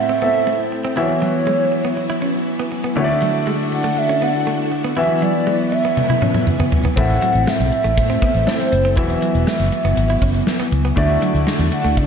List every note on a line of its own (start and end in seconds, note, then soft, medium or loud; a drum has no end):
0.00 0.99 A2 medium
0.00 0.95 A3 medium
0.00 0.19 C4 medium
0.00 0.95 C4 medium
0.00 0.20 E4 medium
0.00 10.93 E4 medium
0.00 0.20 A4 medium
0.00 0.20 E5 medium
0.00 0.21 E5 loud
0.09 0.18 C4 medium
0.22 0.30 B3 medium
0.22 0.97 C4 soft
0.22 0.95 E4 soft
0.22 0.97 A4 soft
0.22 0.69 E5 medium
0.22 0.97 E5 medium
0.47 0.56 A3 medium
0.72 muted clean electric guitar stroke soft
0.85 0.93 C4 medium
0.96 1.68 E3 medium
0.96 2.95 F#3 medium
0.96 2.92 B3 medium
0.96 2.95 B3 medium
0.96 2.93 E4 medium
0.96 1.06 E4 medium
0.96 2.93 F#4 medium
0.96 2.43 C#5 loud
0.96 2.94 E5 medium
1.09 muted clean electric guitar stroke soft
1.22 1.30 F#3 medium
1.47 1.55 G#3 medium
1.72 muted clean electric guitar stroke soft
1.85 1.93 B3 medium
1.97 muted clean electric guitar stroke soft
2.10 2.18 E4 medium
2.22 2.30 C#4 medium
2.59 2.68 B3 medium
2.72 muted clean electric guitar stroke soft
2.84 2.93 B3 medium
2.96 3.68 D3 medium
2.96 4.95 D3 medium
2.96 4.92 A3 medium
2.96 3.05 D4 medium
2.96 4.95 D4 medium
2.96 4.93 E4 medium
2.96 4.95 F#4 medium
2.96 4.93 F#4 medium
2.96 4.95 A4 medium
2.96 3.04 C#5 medium
2.96 3.44 E5 loud
3.04 4.97 D5 medium
3.09 muted clean electric guitar stroke soft
3.22 3.30 F#3 medium
3.47 3.56 G#3 medium
3.72 3.99 F#5 loud
3.72 muted clean electric guitar stroke soft
3.84 3.93 A3 medium
3.97 4.24 E5 loud
3.97 muted clean electric guitar stroke soft
4.09 4.18 C#4 medium
4.22 4.31 B3 medium
4.22 4.72 F#5 loud
4.47 4.55 A3 medium
4.72 muted clean electric guitar stroke soft
4.84 4.93 B3 medium
4.96 5.68 E3 medium
4.96 6.95 F#3 medium
4.96 6.93 B3 medium
4.96 6.95 B3 medium
4.96 5.05 E4 medium
4.96 6.93 E4 medium
4.96 6.94 F#4 medium
4.96 5.21 E5 loud
4.96 6.94 E5 medium
5.09 muted clean electric guitar stroke soft
5.22 5.31 F#3 medium
5.22 5.74 D5 loud
5.47 5.55 G#3 medium
5.72 5.97 E5 loud
5.72 muted clean electric guitar stroke soft
5.85 5.93 B3 medium
5.97 6.68 E5 loud
5.97 muted clean electric guitar stroke soft
5.97 high tom medium
6.10 6.18 E4 medium
6.10 high tom medium
6.22 6.31 C#4 medium
6.22 mid tom medium
6.34 mid tom medium
6.47 mid tom medium
6.60 6.68 B3 medium
6.60 mid tom medium
6.72 muted clean electric guitar stroke soft
6.72 floor tom loud
6.85 6.93 B3 medium
6.85 floor tom medium
6.96 7.16 A1 loud
6.96 7.68 A2 medium
6.96 7.06 A3 medium
6.96 8.95 A3 medium
6.96 8.44 C4 medium
6.96 8.95 C4 medium
6.96 8.44 E4 medium
6.96 8.44 A4 medium
6.96 8.45 E5 medium
6.96 7.49 F#5 loud
6.96 kick loud
6.96 closed hi-hat medium
7.10 muted clean electric guitar stroke soft
7.10 closed hi-hat soft
7.22 7.31 F#3 medium
7.22 closed hi-hat medium
7.35 7.44 A1 medium
7.35 closed hi-hat medium
7.47 7.56 G#3 medium
7.47 7.97 E5 loud
7.47 snare loud
7.60 7.69 B1 medium
7.60 closed hi-hat medium
7.72 muted clean electric guitar stroke soft
7.72 closed hi-hat medium
7.84 7.94 A1 medium
7.84 7.93 A3 medium
7.84 closed hi-hat soft
7.97 8.16 A2 loud
7.97 8.49 E5 loud
7.97 muted clean electric guitar stroke soft
7.97 kick medium
7.97 closed hi-hat medium
8.10 8.18 C4 medium
8.10 closed hi-hat medium
8.22 8.31 B3 medium
8.22 kick medium
8.22 closed hi-hat medium
8.35 8.44 A1 medium
8.35 closed hi-hat medium
8.47 8.56 A3 medium
8.47 8.97 C4 soft
8.47 8.95 E4 soft
8.47 8.97 A4 soft
8.47 8.96 C5 loud
8.47 8.97 E5 medium
8.47 snare medium
8.60 closed hi-hat soft
8.72 8.97 F#1 medium
8.72 muted clean electric guitar stroke soft
8.72 closed hi-hat medium
8.85 8.93 C4 medium
8.85 closed hi-hat soft
8.96 9.16 E1 medium
8.96 9.68 E3 medium
8.96 10.95 F#3 medium
8.96 10.93 B3 medium
8.96 10.95 B3 medium
8.96 10.93 E4 medium
8.96 9.06 E4 medium
8.96 10.93 F#4 medium
8.96 9.43 E5 loud
8.96 10.94 E5 medium
8.96 kick loud
8.96 closed hi-hat medium
9.10 muted clean electric guitar stroke soft
9.10 closed hi-hat soft
9.22 9.31 F#3 medium
9.22 closed hi-hat medium
9.35 9.44 E1 medium
9.35 closed hi-hat medium
9.47 9.56 G#3 medium
9.47 10.68 E5 loud
9.47 snare loud
9.60 9.69 F#1 medium
9.60 closed hi-hat medium
9.72 muted clean electric guitar stroke soft
9.72 closed hi-hat medium
9.85 9.94 F#1 medium
9.85 9.93 B3 medium
9.85 closed hi-hat soft
9.97 10.16 G#1 medium
9.97 muted clean electric guitar stroke soft
9.97 closed hi-hat medium
10.10 10.18 E4 medium
10.10 closed hi-hat medium
10.22 10.41 F#1 medium
10.22 10.31 C#4 medium
10.22 kick medium
10.22 closed hi-hat medium
10.34 closed hi-hat medium
10.47 snare loud
10.60 10.68 B3 medium
10.60 closed hi-hat medium
10.72 10.91 C#2 medium
10.72 muted clean electric guitar stroke soft
10.72 closed hi-hat medium
10.85 10.93 B3 medium
10.85 closed hi-hat soft
10.96 11.16 D2 medium
10.96 12.07 D3 medium
10.96 11.68 D3 medium
10.96 12.07 A3 medium
10.96 12.07 D4 medium
10.96 11.06 D4 medium
10.96 12.07 E4 medium
10.96 12.07 F#4 medium
10.96 12.07 A4 medium
10.96 12.07 D5 medium
10.96 11.43 E5 loud
10.96 kick loud
10.96 closed hi-hat medium
11.10 muted clean electric guitar stroke soft
11.10 closed hi-hat soft
11.22 11.31 F#3 medium
11.22 closed hi-hat medium
11.34 11.44 D2 medium
11.34 closed hi-hat medium
11.47 11.55 G#3 medium
11.47 snare loud
11.59 11.69 E2 medium
11.59 closed hi-hat medium
11.72 11.99 F#5 loud
11.72 muted clean electric guitar stroke soft
11.72 closed hi-hat medium
11.84 11.99 D2 medium
11.84 11.93 A3 medium
11.84 closed hi-hat soft
11.97 12.07 D3 loud
11.97 12.07 D5 loud
11.97 muted clean electric guitar stroke soft
11.97 kick medium
11.97 closed hi-hat medium